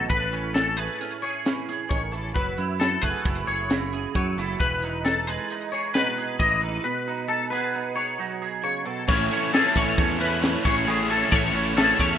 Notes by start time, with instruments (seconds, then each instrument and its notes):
Already playing: clean electric guitar G#4 A4
0.09 fingered electric bass A1, clean electric guitar A2 B4, kick, closed hi-hat
0.33 clean electric guitar C#4, closed hi-hat
0.54 clean electric guitar A4, snare, closed hi-hat
0.77 clean electric guitar A3 G#4 B4, closed hi-hat
1.01 clean electric guitar C#4, snare, closed hi-hat
1.22 clean electric guitar G#4 C#5, closed hi-hat
1.45 clean electric guitar E3 C#4, snare, closed hi-hat
1.69 clean electric guitar G#4, snare, closed hi-hat
1.89 fingered electric bass A1, clean electric guitar D#3 C#5, kick, snare, closed hi-hat
2.12 clean electric guitar E3 A4, closed hi-hat
2.34 fingered electric bass F#1, clean electric guitar F#3 B4, kick, closed hi-hat
2.58 fingered electric bass F#2, clean electric guitar E4, closed hi-hat
2.80 clean electric guitar A4, snare, closed hi-hat
3.02 fingered electric bass F#1, clean electric guitar A3 G#4 B4, kick, closed hi-hat
3.25 fingered electric bass F#1, clean electric guitar E4, kick, closed hi-hat
3.47 fingered electric bass F#1, clean electric guitar G#4 C#5, closed hi-hat
3.70 clean electric guitar C#3 E4, snare, closed hi-hat
3.93 clean electric guitar G#4, closed hi-hat
4.15 fingered electric bass F#2, clean electric guitar F#3 C#5, kick, closed hi-hat
4.38 fingered electric bass F#1, clean electric guitar E4 A4, snare, closed hi-hat
4.60 fingered electric bass E1, clean electric guitar E3 B4, kick, closed hi-hat
4.82 clean electric guitar D#4, closed hi-hat
5.05 clean electric guitar A4, snare, closed hi-hat
5.27 clean electric guitar G#3 G#4 B4, closed hi-hat
5.50 clean electric guitar D#4, closed hi-hat
5.72 clean electric guitar G#4 C#5, closed hi-hat
5.94 clean electric guitar B2 D#4 B4, snare, closed hi-hat
6.17 clean electric guitar G#4, closed hi-hat
6.39 fingered electric bass A1, clean electric guitar E3 D#5, kick, closed hi-hat
6.61 clean electric guitar D#4 B4, closed hi-hat
6.84 clean electric guitar B2 B4
7.08 clean electric guitar D#4
7.28 clean electric guitar A4
7.50 clean electric guitar B3 G#4 B4
7.75 clean electric guitar D#4
7.96 clean electric guitar G#4 C#5
8.19 clean electric guitar F#3 D#4
8.42 clean electric guitar G#4
8.63 clean electric guitar C#3 C#5
8.86 clean electric guitar B2 A4
9.08 fingered electric bass A1, overdriven electric guitar A2 E3 A3 C#4 E4, clean electric guitar A2 C#5, kick, crash
9.29 overdriven electric guitar A3 C#4 E4, clean electric guitar C#5, ride
9.52 overdriven electric guitar E3 A3 C#4 E4, clean electric guitar G#4 A4, snare, ride
9.76 fingered electric bass A1, clean electric guitar A3 C#4 C#5, kick, snare, ride
9.98 fingered electric bass E2, clean electric guitar C#5, kick, ride
10.19 clean electric guitar E3 B4, overdriven electric guitar A3 C#4 E4, ride
10.41 overdriven electric guitar A2 E3 A3 C#4 E4, snare, ride
10.63 fingered electric bass A1, overdriven electric guitar A3 C#4 E4, clean electric guitar G#4 C#5, kick, snare, ride
10.85 overdriven electric guitar A2 E3 A3 C#4 E4, clean electric guitar A2 G#4, ride
11.07 overdriven electric guitar A3 C#4 E4, clean electric guitar A4 C#5, ride
11.30 fingered electric bass A1, overdriven electric guitar A2 E3 A3 C#4 E4, clean electric guitar A2 C#5, kick, ride
11.52 fingered electric bass A1, overdriven electric guitar A3 C#4 E4, clean electric guitar C#5, ride
11.75 overdriven electric guitar E3 A3 C#4 E4, clean electric guitar G#4 A4, snare, ride
11.99 fingered electric bass E2, clean electric guitar A3 C#4 C#5, kick, ride